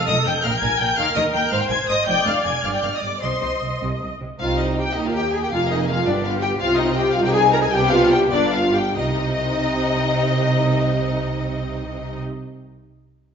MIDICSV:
0, 0, Header, 1, 6, 480
1, 0, Start_track
1, 0, Key_signature, -3, "minor"
1, 0, Tempo, 362319
1, 1296, Time_signature, 6, 3, 24, 8
1, 2747, Tempo, 385604
1, 6107, Tempo, 367422
1, 9947, Tempo, 407056
1, 10907, Tempo, 426136
1, 16338, End_track
2, 0, Start_track
2, 0, Title_t, "Violin section"
2, 0, Program_c, 0, 48
2, 103, Note_on_c, 0, 87, 120
2, 338, Note_off_c, 0, 87, 0
2, 346, Note_on_c, 0, 91, 125
2, 583, Note_on_c, 0, 89, 113
2, 584, Note_off_c, 0, 91, 0
2, 701, Note_off_c, 0, 89, 0
2, 717, Note_on_c, 0, 91, 126
2, 812, Note_on_c, 0, 92, 127
2, 827, Note_off_c, 0, 91, 0
2, 1045, Note_on_c, 0, 91, 127
2, 1053, Note_off_c, 0, 92, 0
2, 1284, Note_on_c, 0, 89, 127
2, 1289, Note_off_c, 0, 91, 0
2, 1529, Note_off_c, 0, 89, 0
2, 1534, Note_on_c, 0, 87, 110
2, 1630, Note_off_c, 0, 87, 0
2, 1766, Note_on_c, 0, 91, 114
2, 2000, Note_on_c, 0, 89, 103
2, 2005, Note_off_c, 0, 91, 0
2, 2128, Note_off_c, 0, 89, 0
2, 2140, Note_on_c, 0, 91, 115
2, 2248, Note_on_c, 0, 92, 120
2, 2259, Note_off_c, 0, 91, 0
2, 2491, Note_off_c, 0, 92, 0
2, 2493, Note_on_c, 0, 87, 127
2, 2738, Note_off_c, 0, 87, 0
2, 2739, Note_on_c, 0, 91, 127
2, 2972, Note_off_c, 0, 91, 0
2, 2982, Note_on_c, 0, 89, 106
2, 3210, Note_on_c, 0, 92, 111
2, 3216, Note_off_c, 0, 89, 0
2, 3444, Note_off_c, 0, 92, 0
2, 3447, Note_on_c, 0, 89, 96
2, 3569, Note_off_c, 0, 89, 0
2, 3584, Note_on_c, 0, 91, 103
2, 3693, Note_on_c, 0, 89, 101
2, 3695, Note_off_c, 0, 91, 0
2, 3813, Note_off_c, 0, 89, 0
2, 3831, Note_on_c, 0, 87, 104
2, 3932, Note_on_c, 0, 86, 117
2, 3943, Note_off_c, 0, 87, 0
2, 4174, Note_on_c, 0, 84, 103
2, 4176, Note_off_c, 0, 86, 0
2, 4891, Note_off_c, 0, 84, 0
2, 5638, Note_on_c, 0, 77, 115
2, 5857, Note_off_c, 0, 77, 0
2, 5874, Note_on_c, 0, 75, 95
2, 6105, Note_on_c, 0, 79, 114
2, 6108, Note_off_c, 0, 75, 0
2, 6344, Note_on_c, 0, 75, 90
2, 6346, Note_off_c, 0, 79, 0
2, 6470, Note_off_c, 0, 75, 0
2, 6488, Note_on_c, 0, 77, 105
2, 6595, Note_on_c, 0, 79, 106
2, 6602, Note_off_c, 0, 77, 0
2, 6833, Note_off_c, 0, 79, 0
2, 6837, Note_on_c, 0, 80, 106
2, 6958, Note_off_c, 0, 80, 0
2, 6965, Note_on_c, 0, 79, 107
2, 7069, Note_on_c, 0, 77, 112
2, 7080, Note_off_c, 0, 79, 0
2, 7305, Note_on_c, 0, 75, 105
2, 7308, Note_off_c, 0, 77, 0
2, 7547, Note_on_c, 0, 77, 108
2, 7548, Note_off_c, 0, 75, 0
2, 7782, Note_off_c, 0, 77, 0
2, 7787, Note_on_c, 0, 74, 102
2, 8024, Note_off_c, 0, 74, 0
2, 8027, Note_on_c, 0, 77, 109
2, 8120, Note_off_c, 0, 77, 0
2, 8256, Note_on_c, 0, 79, 127
2, 8351, Note_off_c, 0, 79, 0
2, 8490, Note_on_c, 0, 77, 127
2, 8726, Note_off_c, 0, 77, 0
2, 8730, Note_on_c, 0, 75, 108
2, 8970, Note_off_c, 0, 75, 0
2, 8974, Note_on_c, 0, 79, 124
2, 9205, Note_on_c, 0, 77, 115
2, 9212, Note_off_c, 0, 79, 0
2, 9329, Note_off_c, 0, 77, 0
2, 9337, Note_on_c, 0, 79, 127
2, 9452, Note_on_c, 0, 80, 122
2, 9454, Note_off_c, 0, 79, 0
2, 9694, Note_off_c, 0, 80, 0
2, 9697, Note_on_c, 0, 82, 127
2, 9747, Note_off_c, 0, 82, 0
2, 9831, Note_on_c, 0, 80, 127
2, 9949, Note_off_c, 0, 80, 0
2, 9957, Note_on_c, 0, 79, 127
2, 10181, Note_off_c, 0, 79, 0
2, 10182, Note_on_c, 0, 77, 127
2, 10413, Note_on_c, 0, 79, 125
2, 10416, Note_off_c, 0, 77, 0
2, 10508, Note_off_c, 0, 79, 0
2, 10653, Note_on_c, 0, 74, 121
2, 10901, Note_off_c, 0, 74, 0
2, 10902, Note_on_c, 0, 77, 120
2, 11150, Note_on_c, 0, 79, 118
2, 11151, Note_off_c, 0, 77, 0
2, 11396, Note_off_c, 0, 79, 0
2, 11399, Note_on_c, 0, 75, 127
2, 15044, Note_off_c, 0, 75, 0
2, 16338, End_track
3, 0, Start_track
3, 0, Title_t, "Violin section"
3, 0, Program_c, 1, 48
3, 110, Note_on_c, 1, 75, 119
3, 205, Note_off_c, 1, 75, 0
3, 353, Note_on_c, 1, 79, 111
3, 446, Note_off_c, 1, 79, 0
3, 593, Note_on_c, 1, 77, 96
3, 638, Note_off_c, 1, 77, 0
3, 691, Note_on_c, 1, 79, 109
3, 741, Note_off_c, 1, 79, 0
3, 819, Note_on_c, 1, 80, 113
3, 1046, Note_on_c, 1, 79, 123
3, 1052, Note_off_c, 1, 80, 0
3, 1285, Note_on_c, 1, 77, 127
3, 1290, Note_off_c, 1, 79, 0
3, 1524, Note_off_c, 1, 77, 0
3, 1535, Note_on_c, 1, 75, 115
3, 1631, Note_off_c, 1, 75, 0
3, 1769, Note_on_c, 1, 79, 109
3, 2007, Note_off_c, 1, 79, 0
3, 2016, Note_on_c, 1, 77, 122
3, 2133, Note_off_c, 1, 77, 0
3, 2136, Note_on_c, 1, 79, 99
3, 2184, Note_off_c, 1, 79, 0
3, 2259, Note_on_c, 1, 80, 104
3, 2356, Note_off_c, 1, 80, 0
3, 2512, Note_on_c, 1, 75, 114
3, 2747, Note_off_c, 1, 75, 0
3, 2757, Note_on_c, 1, 79, 127
3, 2981, Note_off_c, 1, 79, 0
3, 2993, Note_on_c, 1, 77, 98
3, 3217, Note_off_c, 1, 77, 0
3, 3228, Note_on_c, 1, 80, 112
3, 3451, Note_on_c, 1, 77, 98
3, 3458, Note_off_c, 1, 80, 0
3, 3498, Note_off_c, 1, 77, 0
3, 3571, Note_on_c, 1, 79, 93
3, 3686, Note_on_c, 1, 77, 96
3, 3689, Note_off_c, 1, 79, 0
3, 3735, Note_off_c, 1, 77, 0
3, 3821, Note_on_c, 1, 75, 88
3, 3935, Note_off_c, 1, 75, 0
3, 3938, Note_on_c, 1, 74, 91
3, 4179, Note_off_c, 1, 74, 0
3, 4182, Note_on_c, 1, 72, 101
3, 4910, Note_off_c, 1, 72, 0
3, 5629, Note_on_c, 1, 63, 89
3, 5632, Note_on_c, 1, 60, 91
3, 6296, Note_off_c, 1, 63, 0
3, 6297, Note_off_c, 1, 60, 0
3, 6366, Note_on_c, 1, 67, 83
3, 6367, Note_on_c, 1, 58, 83
3, 7070, Note_off_c, 1, 58, 0
3, 7085, Note_on_c, 1, 58, 91
3, 7086, Note_off_c, 1, 67, 0
3, 7091, Note_on_c, 1, 68, 86
3, 7780, Note_off_c, 1, 58, 0
3, 7795, Note_on_c, 1, 59, 83
3, 7795, Note_on_c, 1, 67, 87
3, 7796, Note_off_c, 1, 68, 0
3, 8493, Note_on_c, 1, 65, 99
3, 8496, Note_on_c, 1, 60, 103
3, 8498, Note_off_c, 1, 59, 0
3, 8498, Note_off_c, 1, 67, 0
3, 9190, Note_off_c, 1, 60, 0
3, 9206, Note_on_c, 1, 60, 93
3, 9208, Note_on_c, 1, 63, 108
3, 9210, Note_off_c, 1, 65, 0
3, 9931, Note_off_c, 1, 60, 0
3, 9947, Note_off_c, 1, 63, 0
3, 9948, Note_on_c, 1, 59, 115
3, 9950, Note_on_c, 1, 62, 104
3, 10640, Note_off_c, 1, 62, 0
3, 10643, Note_off_c, 1, 59, 0
3, 10655, Note_on_c, 1, 62, 95
3, 10657, Note_on_c, 1, 59, 96
3, 11143, Note_off_c, 1, 62, 0
3, 11145, Note_off_c, 1, 59, 0
3, 11400, Note_on_c, 1, 63, 101
3, 11401, Note_on_c, 1, 60, 98
3, 15045, Note_off_c, 1, 60, 0
3, 15045, Note_off_c, 1, 63, 0
3, 16338, End_track
4, 0, Start_track
4, 0, Title_t, "Viola section"
4, 0, Program_c, 2, 48
4, 0, Note_on_c, 2, 69, 110
4, 572, Note_off_c, 2, 69, 0
4, 584, Note_on_c, 2, 70, 102
4, 1275, Note_off_c, 2, 70, 0
4, 1291, Note_on_c, 2, 70, 108
4, 1997, Note_off_c, 2, 70, 0
4, 2013, Note_on_c, 2, 72, 109
4, 2742, Note_on_c, 2, 74, 109
4, 2746, Note_off_c, 2, 72, 0
4, 3429, Note_off_c, 2, 74, 0
4, 3444, Note_on_c, 2, 74, 88
4, 4158, Note_off_c, 2, 74, 0
4, 4179, Note_on_c, 2, 75, 87
4, 5253, Note_off_c, 2, 75, 0
4, 5641, Note_on_c, 2, 65, 109
4, 5859, Note_off_c, 2, 65, 0
4, 5870, Note_on_c, 2, 63, 85
4, 6105, Note_on_c, 2, 67, 90
4, 6106, Note_off_c, 2, 63, 0
4, 6347, Note_on_c, 2, 63, 94
4, 6351, Note_off_c, 2, 67, 0
4, 6471, Note_off_c, 2, 63, 0
4, 6473, Note_on_c, 2, 65, 91
4, 6595, Note_off_c, 2, 65, 0
4, 6600, Note_on_c, 2, 67, 102
4, 6835, Note_off_c, 2, 67, 0
4, 6845, Note_on_c, 2, 68, 97
4, 6892, Note_off_c, 2, 68, 0
4, 6961, Note_on_c, 2, 67, 92
4, 7078, Note_off_c, 2, 67, 0
4, 7094, Note_on_c, 2, 65, 111
4, 7186, Note_off_c, 2, 65, 0
4, 7328, Note_on_c, 2, 63, 87
4, 7555, Note_off_c, 2, 63, 0
4, 7568, Note_on_c, 2, 65, 93
4, 7797, Note_off_c, 2, 65, 0
4, 7802, Note_on_c, 2, 62, 101
4, 8029, Note_on_c, 2, 65, 115
4, 8032, Note_off_c, 2, 62, 0
4, 8258, Note_on_c, 2, 67, 110
4, 8261, Note_off_c, 2, 65, 0
4, 8494, Note_off_c, 2, 67, 0
4, 8497, Note_on_c, 2, 65, 127
4, 8730, Note_off_c, 2, 65, 0
4, 8741, Note_on_c, 2, 63, 105
4, 8976, Note_off_c, 2, 63, 0
4, 8979, Note_on_c, 2, 67, 106
4, 9210, Note_off_c, 2, 67, 0
4, 9217, Note_on_c, 2, 65, 121
4, 9332, Note_off_c, 2, 65, 0
4, 9337, Note_on_c, 2, 67, 118
4, 9450, Note_on_c, 2, 68, 123
4, 9454, Note_off_c, 2, 67, 0
4, 9550, Note_off_c, 2, 68, 0
4, 9704, Note_on_c, 2, 70, 117
4, 9753, Note_off_c, 2, 70, 0
4, 9818, Note_on_c, 2, 68, 110
4, 9869, Note_off_c, 2, 68, 0
4, 9947, Note_on_c, 2, 67, 127
4, 10171, Note_off_c, 2, 67, 0
4, 10178, Note_on_c, 2, 65, 122
4, 10414, Note_off_c, 2, 65, 0
4, 10414, Note_on_c, 2, 67, 125
4, 10658, Note_off_c, 2, 67, 0
4, 10666, Note_on_c, 2, 62, 120
4, 10911, Note_on_c, 2, 65, 106
4, 10912, Note_off_c, 2, 62, 0
4, 11149, Note_on_c, 2, 67, 92
4, 11151, Note_off_c, 2, 65, 0
4, 11396, Note_off_c, 2, 67, 0
4, 11399, Note_on_c, 2, 63, 92
4, 15043, Note_off_c, 2, 63, 0
4, 16338, End_track
5, 0, Start_track
5, 0, Title_t, "Cello section"
5, 0, Program_c, 3, 48
5, 114, Note_on_c, 3, 41, 84
5, 208, Note_off_c, 3, 41, 0
5, 348, Note_on_c, 3, 41, 93
5, 443, Note_off_c, 3, 41, 0
5, 587, Note_on_c, 3, 46, 113
5, 681, Note_off_c, 3, 46, 0
5, 824, Note_on_c, 3, 46, 81
5, 918, Note_off_c, 3, 46, 0
5, 1063, Note_on_c, 3, 46, 89
5, 1157, Note_off_c, 3, 46, 0
5, 1301, Note_on_c, 3, 51, 118
5, 1395, Note_off_c, 3, 51, 0
5, 1537, Note_on_c, 3, 51, 87
5, 1632, Note_off_c, 3, 51, 0
5, 1777, Note_on_c, 3, 51, 81
5, 1873, Note_off_c, 3, 51, 0
5, 2019, Note_on_c, 3, 44, 116
5, 2115, Note_off_c, 3, 44, 0
5, 2256, Note_on_c, 3, 44, 79
5, 2354, Note_off_c, 3, 44, 0
5, 2501, Note_on_c, 3, 44, 78
5, 2600, Note_off_c, 3, 44, 0
5, 2742, Note_on_c, 3, 41, 110
5, 2837, Note_off_c, 3, 41, 0
5, 2978, Note_on_c, 3, 41, 81
5, 3072, Note_off_c, 3, 41, 0
5, 3213, Note_on_c, 3, 41, 69
5, 3308, Note_off_c, 3, 41, 0
5, 3450, Note_on_c, 3, 43, 108
5, 3546, Note_off_c, 3, 43, 0
5, 3693, Note_on_c, 3, 43, 69
5, 3790, Note_off_c, 3, 43, 0
5, 3932, Note_on_c, 3, 43, 72
5, 4029, Note_off_c, 3, 43, 0
5, 4174, Note_on_c, 3, 48, 101
5, 4272, Note_off_c, 3, 48, 0
5, 4418, Note_on_c, 3, 48, 68
5, 4516, Note_off_c, 3, 48, 0
5, 4668, Note_on_c, 3, 48, 67
5, 4765, Note_off_c, 3, 48, 0
5, 4910, Note_on_c, 3, 48, 99
5, 5007, Note_off_c, 3, 48, 0
5, 5158, Note_on_c, 3, 48, 65
5, 5255, Note_off_c, 3, 48, 0
5, 5399, Note_on_c, 3, 48, 70
5, 5495, Note_off_c, 3, 48, 0
5, 5644, Note_on_c, 3, 36, 100
5, 6304, Note_off_c, 3, 36, 0
5, 6353, Note_on_c, 3, 39, 86
5, 7065, Note_off_c, 3, 39, 0
5, 7082, Note_on_c, 3, 41, 102
5, 7778, Note_off_c, 3, 41, 0
5, 7791, Note_on_c, 3, 43, 99
5, 8496, Note_off_c, 3, 43, 0
5, 8498, Note_on_c, 3, 48, 106
5, 9199, Note_off_c, 3, 48, 0
5, 9216, Note_on_c, 3, 36, 109
5, 9951, Note_off_c, 3, 36, 0
5, 9954, Note_on_c, 3, 48, 124
5, 10646, Note_off_c, 3, 48, 0
5, 10659, Note_on_c, 3, 43, 108
5, 11384, Note_off_c, 3, 43, 0
5, 11396, Note_on_c, 3, 48, 103
5, 15040, Note_off_c, 3, 48, 0
5, 16338, End_track
6, 0, Start_track
6, 0, Title_t, "Double bass section"
6, 0, Program_c, 4, 48
6, 107, Note_on_c, 4, 29, 79
6, 202, Note_off_c, 4, 29, 0
6, 343, Note_on_c, 4, 29, 85
6, 439, Note_off_c, 4, 29, 0
6, 583, Note_on_c, 4, 34, 108
6, 678, Note_off_c, 4, 34, 0
6, 821, Note_on_c, 4, 34, 74
6, 915, Note_off_c, 4, 34, 0
6, 1051, Note_on_c, 4, 34, 73
6, 1148, Note_off_c, 4, 34, 0
6, 1292, Note_on_c, 4, 39, 107
6, 1388, Note_off_c, 4, 39, 0
6, 1528, Note_on_c, 4, 39, 73
6, 1625, Note_off_c, 4, 39, 0
6, 1769, Note_on_c, 4, 39, 93
6, 1866, Note_off_c, 4, 39, 0
6, 2006, Note_on_c, 4, 32, 103
6, 2104, Note_off_c, 4, 32, 0
6, 2251, Note_on_c, 4, 32, 72
6, 2350, Note_off_c, 4, 32, 0
6, 2494, Note_on_c, 4, 32, 72
6, 2594, Note_off_c, 4, 32, 0
6, 2739, Note_on_c, 4, 29, 121
6, 2834, Note_off_c, 4, 29, 0
6, 2979, Note_on_c, 4, 29, 71
6, 3073, Note_off_c, 4, 29, 0
6, 3208, Note_on_c, 4, 29, 85
6, 3304, Note_off_c, 4, 29, 0
6, 3445, Note_on_c, 4, 31, 98
6, 3542, Note_off_c, 4, 31, 0
6, 3685, Note_on_c, 4, 31, 61
6, 3783, Note_off_c, 4, 31, 0
6, 3930, Note_on_c, 4, 31, 67
6, 4028, Note_off_c, 4, 31, 0
6, 4176, Note_on_c, 4, 36, 89
6, 4273, Note_off_c, 4, 36, 0
6, 4419, Note_on_c, 4, 36, 65
6, 4516, Note_off_c, 4, 36, 0
6, 4665, Note_on_c, 4, 36, 71
6, 4763, Note_off_c, 4, 36, 0
6, 4910, Note_on_c, 4, 36, 94
6, 5007, Note_off_c, 4, 36, 0
6, 5152, Note_on_c, 4, 36, 61
6, 5250, Note_off_c, 4, 36, 0
6, 5400, Note_on_c, 4, 36, 63
6, 5496, Note_off_c, 4, 36, 0
6, 5638, Note_on_c, 4, 36, 98
6, 6301, Note_off_c, 4, 36, 0
6, 6362, Note_on_c, 4, 39, 90
6, 7069, Note_off_c, 4, 39, 0
6, 7082, Note_on_c, 4, 29, 98
6, 7778, Note_off_c, 4, 29, 0
6, 7792, Note_on_c, 4, 31, 92
6, 8494, Note_on_c, 4, 36, 107
6, 8496, Note_off_c, 4, 31, 0
6, 9193, Note_off_c, 4, 36, 0
6, 9208, Note_on_c, 4, 36, 105
6, 9932, Note_off_c, 4, 36, 0
6, 9948, Note_on_c, 4, 36, 123
6, 10643, Note_off_c, 4, 36, 0
6, 10652, Note_on_c, 4, 31, 101
6, 11381, Note_off_c, 4, 31, 0
6, 11396, Note_on_c, 4, 36, 100
6, 15041, Note_off_c, 4, 36, 0
6, 16338, End_track
0, 0, End_of_file